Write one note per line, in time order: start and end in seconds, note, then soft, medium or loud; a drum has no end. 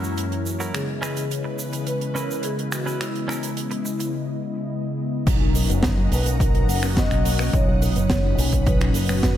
0.00 0.70 F#2 medium
0.00 4.10 E3 medium
0.00 0.70 F#3 medium
0.00 0.70 G#3 medium
0.00 0.71 A#3 medium
0.00 0.71 C#4 medium
0.00 4.10 C#4 medium
0.00 0.25 E4 medium
0.00 0.71 E4 medium
0.00 0.25 F#4 medium
0.00 0.25 A#4 loud
0.00 0.70 A#4 medium
0.00 shaker medium
0.17 closed hi-hat medium
0.17 shaker soft
0.32 closed hi-hat soft
0.46 shaker medium
0.60 0.74 E4 medium
0.60 0.74 F#4 medium
0.60 0.74 A#4 medium
0.60 shaker medium
0.73 5.23 C#3 medium
0.73 4.10 C#3 medium
0.73 5.23 G#3 medium
0.73 5.24 B3 medium
0.73 5.24 E4 medium
0.73 1.55 G#4 loud
0.73 4.10 B4 medium
0.73 5.24 D#5 medium
0.73 finger snap medium
0.73 closed hi-hat medium
0.73 shaker soft
1.02 1.23 C#4 loud
1.02 1.24 E4 medium
1.02 1.24 B4 loud
1.02 finger snap medium
1.02 shaker medium
1.17 closed hi-hat medium
1.17 shaker medium
1.31 closed hi-hat medium
1.31 shaker soft
1.44 muted clean electric guitar stroke medium
1.58 muted clean electric guitar stroke soft
1.58 shaker medium
1.73 muted clean electric guitar stroke soft
1.73 closed hi-hat medium
1.73 shaker medium
1.87 2.14 B4 loud
1.87 closed hi-hat medium
1.87 shaker soft
2.01 closed hi-hat soft
2.15 2.51 C#4 loud
2.15 2.51 E4 medium
2.15 2.45 A#4 medium
2.15 2.51 B4 loud
2.15 shaker medium
2.31 shaker medium
2.43 2.73 G#4 loud
2.43 closed hi-hat medium
2.43 shaker soft
2.59 closed hi-hat soft
2.72 3.01 F#4 medium
2.72 finger snap medium
2.72 shaker medium
2.86 3.07 C#4 medium
2.86 3.08 E4 medium
2.86 3.08 B4 medium
2.86 shaker medium
3.00 4.10 E4 medium
3.00 finger snap medium
3.00 closed hi-hat medium
3.00 shaker soft
3.15 closed hi-hat soft
3.28 3.50 C#4 loud
3.28 3.50 E4 medium
3.28 3.50 A#4 loud
3.28 finger snap medium
3.28 shaker medium
3.43 closed hi-hat medium
3.43 shaker medium
3.57 closed hi-hat medium
3.57 shaker soft
3.71 muted clean electric guitar stroke medium
3.71 closed hi-hat soft
3.85 muted clean electric guitar stroke soft
3.85 shaker medium
4.00 muted clean electric guitar stroke soft
4.00 closed hi-hat medium
4.00 shaker medium
5.25 5.66 B1 loud
5.25 5.39 D#3 medium
5.25 6.78 F#3 medium
5.25 6.79 A#3 medium
5.25 6.79 C#4 medium
5.25 6.80 D#4 medium
5.25 9.37 F#5 medium
5.25 7.51 A#5 medium
5.25 9.37 D#6 medium
5.25 kick loud
5.25 closed hi-hat medium
5.25 crash loud
5.25 shaker medium
5.41 5.49 F#3 loud
5.55 5.60 A#3 medium
5.55 open hi-hat loud
5.55 shaker medium
5.69 6.08 F#1 medium
5.69 5.81 B3 loud
5.69 closed hi-hat medium
5.69 shaker medium
5.83 5.96 D#3 medium
5.83 kick loud
5.83 snare loud
5.83 closed hi-hat medium
5.83 shaker soft
5.98 6.06 F#3 loud
6.12 6.68 B1 loud
6.12 6.20 A#3 medium
6.12 6.27 B4 loud
6.12 open hi-hat loud
6.12 shaker medium
6.26 6.31 B3 loud
6.26 6.39 A#4 medium
6.26 closed hi-hat medium
6.26 shaker medium
6.40 6.52 D#3 medium
6.40 6.66 A#4 medium
6.40 kick loud
6.40 closed hi-hat medium
6.40 shaker soft
6.54 6.62 F#3 loud
6.54 closed hi-hat medium
6.68 7.07 F#1 medium
6.68 6.73 A#3 medium
6.68 6.98 F#5 loud
6.68 open hi-hat loud
6.68 shaker medium
6.82 7.50 F#3 medium
6.82 7.50 A#3 medium
6.82 6.95 B3 loud
6.82 7.50 C#4 medium
6.82 7.51 F#4 loud
6.82 finger snap medium
6.82 shaker medium
6.97 7.09 D#3 medium
6.97 7.23 D#5 loud
6.97 kick loud
6.97 snare loud
6.97 closed hi-hat medium
6.97 shaker medium
7.11 7.49 B1 medium
7.11 7.19 F#3 loud
7.11 finger snap medium
7.11 closed hi-hat medium
7.25 7.33 A#3 medium
7.25 7.54 D#5 medium
7.25 open hi-hat loud
7.25 shaker medium
7.39 7.44 B3 loud
7.39 finger snap medium
7.39 shaker medium
7.53 7.92 B1 loud
7.53 9.06 A#2 medium
7.53 7.66 D#3 medium
7.53 9.05 F#3 medium
7.53 9.06 C#4 medium
7.53 9.06 D#4 medium
7.53 8.70 C#5 loud
7.53 9.37 B5 medium
7.53 kick loud
7.53 closed hi-hat loud
7.53 shaker soft
7.68 7.76 F#3 loud
7.82 7.87 A#3 medium
7.82 open hi-hat loud
7.82 shaker medium
7.96 8.34 F#1 medium
7.96 8.08 B3 loud
7.96 closed hi-hat medium
7.96 shaker medium
8.10 8.22 D#3 medium
8.10 kick loud
8.10 snare loud
8.10 closed hi-hat medium
8.10 shaker soft
8.25 8.32 F#3 loud
8.38 8.95 B1 loud
8.38 8.46 A#3 medium
8.38 open hi-hat loud
8.38 shaker medium
8.53 8.57 B3 loud
8.53 kick medium
8.53 closed hi-hat medium
8.53 shaker medium
8.66 8.79 D#3 medium
8.66 9.37 B4 medium
8.66 kick loud
8.66 closed hi-hat medium
8.66 shaker soft
8.81 8.89 F#3 loud
8.81 finger snap medium
8.81 closed hi-hat soft
8.94 9.33 F#1 medium
8.94 9.00 A#3 medium
8.94 open hi-hat loud
8.94 shaker medium
9.08 9.37 A#2 medium
9.08 9.37 F#3 medium
9.08 9.21 B3 loud
9.08 9.37 C#4 medium
9.08 9.37 F#4 loud
9.08 finger snap medium
9.08 shaker medium
9.23 9.35 D#3 medium
9.23 kick loud
9.23 snare loud
9.23 closed hi-hat medium
9.23 shaker medium